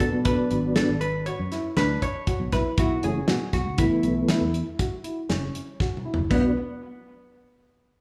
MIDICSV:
0, 0, Header, 1, 6, 480
1, 0, Start_track
1, 0, Tempo, 503778
1, 2644, Time_signature, 7, 2, 24, 8
1, 7631, End_track
2, 0, Start_track
2, 0, Title_t, "Hollow-body jazz guitar"
2, 0, Program_c, 0, 26
2, 0, Note_on_c, 0, 69, 87
2, 225, Note_off_c, 0, 69, 0
2, 238, Note_on_c, 0, 71, 91
2, 687, Note_off_c, 0, 71, 0
2, 722, Note_on_c, 0, 69, 75
2, 960, Note_on_c, 0, 71, 81
2, 970, Note_off_c, 0, 69, 0
2, 1198, Note_off_c, 0, 71, 0
2, 1202, Note_on_c, 0, 73, 80
2, 1649, Note_off_c, 0, 73, 0
2, 1688, Note_on_c, 0, 71, 81
2, 1926, Note_off_c, 0, 71, 0
2, 1930, Note_on_c, 0, 73, 104
2, 2406, Note_off_c, 0, 73, 0
2, 2410, Note_on_c, 0, 71, 83
2, 2630, Note_off_c, 0, 71, 0
2, 2659, Note_on_c, 0, 66, 87
2, 2894, Note_off_c, 0, 66, 0
2, 2898, Note_on_c, 0, 68, 86
2, 3367, Note_off_c, 0, 68, 0
2, 3371, Note_on_c, 0, 66, 78
2, 3609, Note_on_c, 0, 64, 68
2, 3615, Note_off_c, 0, 66, 0
2, 5488, Note_off_c, 0, 64, 0
2, 6013, Note_on_c, 0, 59, 81
2, 6232, Note_off_c, 0, 59, 0
2, 7631, End_track
3, 0, Start_track
3, 0, Title_t, "Grand piano"
3, 0, Program_c, 1, 0
3, 242, Note_on_c, 1, 62, 77
3, 510, Note_off_c, 1, 62, 0
3, 724, Note_on_c, 1, 62, 75
3, 992, Note_off_c, 1, 62, 0
3, 1205, Note_on_c, 1, 66, 65
3, 1338, Note_off_c, 1, 66, 0
3, 1446, Note_on_c, 1, 64, 69
3, 1579, Note_off_c, 1, 64, 0
3, 1686, Note_on_c, 1, 62, 81
3, 1953, Note_off_c, 1, 62, 0
3, 2163, Note_on_c, 1, 66, 73
3, 2297, Note_off_c, 1, 66, 0
3, 2409, Note_on_c, 1, 64, 68
3, 2541, Note_off_c, 1, 64, 0
3, 2654, Note_on_c, 1, 64, 82
3, 2785, Note_off_c, 1, 64, 0
3, 2890, Note_on_c, 1, 61, 67
3, 3022, Note_off_c, 1, 61, 0
3, 3127, Note_on_c, 1, 66, 77
3, 3394, Note_off_c, 1, 66, 0
3, 3610, Note_on_c, 1, 64, 65
3, 3876, Note_off_c, 1, 64, 0
3, 4090, Note_on_c, 1, 64, 75
3, 4356, Note_off_c, 1, 64, 0
3, 4566, Note_on_c, 1, 66, 67
3, 4699, Note_off_c, 1, 66, 0
3, 4801, Note_on_c, 1, 64, 54
3, 4936, Note_off_c, 1, 64, 0
3, 5042, Note_on_c, 1, 61, 70
3, 5310, Note_off_c, 1, 61, 0
3, 5525, Note_on_c, 1, 66, 70
3, 5658, Note_off_c, 1, 66, 0
3, 5764, Note_on_c, 1, 64, 60
3, 5898, Note_off_c, 1, 64, 0
3, 6005, Note_on_c, 1, 59, 70
3, 6228, Note_off_c, 1, 59, 0
3, 7631, End_track
4, 0, Start_track
4, 0, Title_t, "Tonewheel organ"
4, 0, Program_c, 2, 16
4, 0, Note_on_c, 2, 54, 58
4, 0, Note_on_c, 2, 59, 51
4, 0, Note_on_c, 2, 62, 59
4, 195, Note_off_c, 2, 54, 0
4, 197, Note_off_c, 2, 59, 0
4, 198, Note_off_c, 2, 62, 0
4, 241, Note_on_c, 2, 54, 70
4, 242, Note_on_c, 2, 59, 55
4, 245, Note_on_c, 2, 62, 70
4, 914, Note_off_c, 2, 54, 0
4, 915, Note_off_c, 2, 59, 0
4, 916, Note_off_c, 2, 62, 0
4, 2885, Note_on_c, 2, 57, 45
4, 2886, Note_on_c, 2, 52, 57
4, 2890, Note_on_c, 2, 61, 57
4, 3052, Note_off_c, 2, 57, 0
4, 3053, Note_off_c, 2, 52, 0
4, 3055, Note_off_c, 2, 61, 0
4, 3606, Note_on_c, 2, 52, 59
4, 3606, Note_on_c, 2, 57, 55
4, 3609, Note_on_c, 2, 59, 60
4, 4277, Note_off_c, 2, 52, 0
4, 4277, Note_off_c, 2, 57, 0
4, 4278, Note_off_c, 2, 59, 0
4, 6006, Note_on_c, 2, 59, 59
4, 6006, Note_on_c, 2, 62, 74
4, 6008, Note_on_c, 2, 54, 66
4, 6228, Note_off_c, 2, 59, 0
4, 6228, Note_off_c, 2, 62, 0
4, 6230, Note_off_c, 2, 54, 0
4, 7631, End_track
5, 0, Start_track
5, 0, Title_t, "Fingered electric bass"
5, 0, Program_c, 3, 33
5, 4, Note_on_c, 3, 47, 79
5, 98, Note_off_c, 3, 47, 0
5, 124, Note_on_c, 3, 47, 76
5, 408, Note_off_c, 3, 47, 0
5, 487, Note_on_c, 3, 32, 74
5, 769, Note_off_c, 3, 32, 0
5, 848, Note_on_c, 3, 32, 67
5, 1224, Note_off_c, 3, 32, 0
5, 1328, Note_on_c, 3, 42, 64
5, 1516, Note_off_c, 3, 42, 0
5, 1681, Note_on_c, 3, 38, 82
5, 1871, Note_off_c, 3, 38, 0
5, 2284, Note_on_c, 3, 35, 81
5, 2379, Note_off_c, 3, 35, 0
5, 2408, Note_on_c, 3, 35, 91
5, 2501, Note_off_c, 3, 35, 0
5, 2646, Note_on_c, 3, 35, 79
5, 2834, Note_off_c, 3, 35, 0
5, 2889, Note_on_c, 3, 30, 82
5, 3076, Note_off_c, 3, 30, 0
5, 3123, Note_on_c, 3, 47, 69
5, 3218, Note_off_c, 3, 47, 0
5, 3363, Note_on_c, 3, 35, 78
5, 3458, Note_off_c, 3, 35, 0
5, 3485, Note_on_c, 3, 37, 73
5, 3673, Note_off_c, 3, 37, 0
5, 3842, Note_on_c, 3, 35, 84
5, 4032, Note_off_c, 3, 35, 0
5, 4204, Note_on_c, 3, 40, 73
5, 4393, Note_off_c, 3, 40, 0
5, 5046, Note_on_c, 3, 30, 74
5, 5234, Note_off_c, 3, 30, 0
5, 5892, Note_on_c, 3, 30, 77
5, 5983, Note_off_c, 3, 30, 0
5, 6008, Note_on_c, 3, 35, 80
5, 6230, Note_off_c, 3, 35, 0
5, 7631, End_track
6, 0, Start_track
6, 0, Title_t, "Drums"
6, 2, Note_on_c, 9, 42, 57
6, 3, Note_on_c, 9, 36, 70
6, 97, Note_off_c, 9, 42, 0
6, 98, Note_off_c, 9, 36, 0
6, 238, Note_on_c, 9, 42, 81
6, 242, Note_on_c, 9, 36, 96
6, 334, Note_off_c, 9, 42, 0
6, 337, Note_off_c, 9, 36, 0
6, 483, Note_on_c, 9, 42, 54
6, 578, Note_off_c, 9, 42, 0
6, 721, Note_on_c, 9, 38, 108
6, 721, Note_on_c, 9, 42, 78
6, 817, Note_off_c, 9, 38, 0
6, 817, Note_off_c, 9, 42, 0
6, 963, Note_on_c, 9, 42, 54
6, 1058, Note_off_c, 9, 42, 0
6, 1203, Note_on_c, 9, 42, 55
6, 1298, Note_off_c, 9, 42, 0
6, 1445, Note_on_c, 9, 38, 29
6, 1445, Note_on_c, 9, 42, 54
6, 1540, Note_off_c, 9, 38, 0
6, 1540, Note_off_c, 9, 42, 0
6, 1683, Note_on_c, 9, 38, 93
6, 1683, Note_on_c, 9, 42, 66
6, 1778, Note_off_c, 9, 38, 0
6, 1778, Note_off_c, 9, 42, 0
6, 1926, Note_on_c, 9, 36, 64
6, 1927, Note_on_c, 9, 42, 59
6, 2021, Note_off_c, 9, 36, 0
6, 2022, Note_off_c, 9, 42, 0
6, 2164, Note_on_c, 9, 42, 66
6, 2165, Note_on_c, 9, 36, 84
6, 2259, Note_off_c, 9, 42, 0
6, 2261, Note_off_c, 9, 36, 0
6, 2405, Note_on_c, 9, 38, 29
6, 2405, Note_on_c, 9, 42, 59
6, 2406, Note_on_c, 9, 36, 68
6, 2500, Note_off_c, 9, 38, 0
6, 2500, Note_off_c, 9, 42, 0
6, 2501, Note_off_c, 9, 36, 0
6, 2645, Note_on_c, 9, 42, 75
6, 2646, Note_on_c, 9, 36, 97
6, 2740, Note_off_c, 9, 42, 0
6, 2742, Note_off_c, 9, 36, 0
6, 2888, Note_on_c, 9, 42, 53
6, 2983, Note_off_c, 9, 42, 0
6, 3123, Note_on_c, 9, 38, 101
6, 3123, Note_on_c, 9, 42, 68
6, 3218, Note_off_c, 9, 38, 0
6, 3218, Note_off_c, 9, 42, 0
6, 3364, Note_on_c, 9, 38, 33
6, 3364, Note_on_c, 9, 42, 49
6, 3366, Note_on_c, 9, 36, 67
6, 3459, Note_off_c, 9, 38, 0
6, 3459, Note_off_c, 9, 42, 0
6, 3461, Note_off_c, 9, 36, 0
6, 3601, Note_on_c, 9, 42, 83
6, 3606, Note_on_c, 9, 36, 99
6, 3696, Note_off_c, 9, 42, 0
6, 3701, Note_off_c, 9, 36, 0
6, 3843, Note_on_c, 9, 42, 54
6, 3938, Note_off_c, 9, 42, 0
6, 4083, Note_on_c, 9, 38, 96
6, 4083, Note_on_c, 9, 42, 83
6, 4178, Note_off_c, 9, 38, 0
6, 4178, Note_off_c, 9, 42, 0
6, 4327, Note_on_c, 9, 42, 57
6, 4422, Note_off_c, 9, 42, 0
6, 4566, Note_on_c, 9, 38, 26
6, 4566, Note_on_c, 9, 42, 69
6, 4567, Note_on_c, 9, 36, 77
6, 4662, Note_off_c, 9, 36, 0
6, 4662, Note_off_c, 9, 38, 0
6, 4662, Note_off_c, 9, 42, 0
6, 4805, Note_on_c, 9, 42, 58
6, 4901, Note_off_c, 9, 42, 0
6, 5046, Note_on_c, 9, 38, 89
6, 5046, Note_on_c, 9, 42, 66
6, 5141, Note_off_c, 9, 38, 0
6, 5141, Note_off_c, 9, 42, 0
6, 5289, Note_on_c, 9, 42, 60
6, 5384, Note_off_c, 9, 42, 0
6, 5528, Note_on_c, 9, 36, 84
6, 5530, Note_on_c, 9, 38, 46
6, 5624, Note_off_c, 9, 36, 0
6, 5625, Note_off_c, 9, 38, 0
6, 5690, Note_on_c, 9, 47, 63
6, 5785, Note_off_c, 9, 47, 0
6, 5848, Note_on_c, 9, 43, 87
6, 5943, Note_off_c, 9, 43, 0
6, 6009, Note_on_c, 9, 36, 88
6, 6011, Note_on_c, 9, 49, 78
6, 6104, Note_off_c, 9, 36, 0
6, 6106, Note_off_c, 9, 49, 0
6, 7631, End_track
0, 0, End_of_file